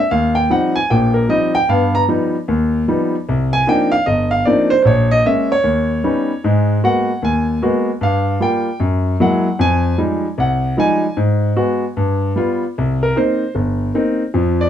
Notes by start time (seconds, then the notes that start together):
0.11 D#2 F5
0.35 G5
0.50 F3 G3 C4 D#4 F#5
0.76 G#5
0.90 A#1 A#2 G5
1.14 A#4
1.29 F3 G3 C4 D#4 D#5
1.55 G5
1.69 G2 B3 F5
1.95 A#5
2.08 F3 G3 B3 D#4
2.48 D#2
2.88 F3 G3 B3 D#4
3.29 C2
3.53 G#5
3.67 F3 A#3 C4 D4 D#4 G5
3.92 F5
4.06 G1 D#5
4.31 F5
4.45 F3 A#3 C4 D4 D#4 D5
4.70 C5
4.83 A#1 C5
4.87 C#5
5.11 D#5
5.25 G#3 A#3 C#4 E5
5.52 C#5
5.64 D#2
6.03 G3 B3 C#4 D#4
6.44 G#2 G#3
6.84 G#3 A#3 B3 F#4 F#5
7.22 D#2 G#5
7.62 G#3 A#3 B3 F#4
8.01 G2 F5
8.40 G3 A#3 F4 G5
8.80 F#2
9.20 F#3 G#3 A#3 E4 F#5
9.59 F2 G#5
9.98 F3 G3 G#3 D#4
10.38 C2 F#5
10.77 F3 G3 G#3 D#4 G#5
11.17 G#2
11.56 G#3 B3 F#4
11.97 G2
12.36 G3 B3 F4
12.78 C2
13.03 A#4
13.16 A#3 C4 D#4 C5
13.55 G1
13.94 A#3 C4 D#4
14.34 F2 F3
14.61 D5